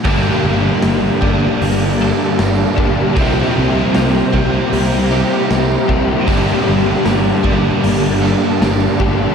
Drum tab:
HH |o-o-o-o-|o-o-o-o-|o-o-o-o-|
SD |--o---o-|--o---o-|--o---o-|
BD |o--o---o|o--o---o|o--o---o|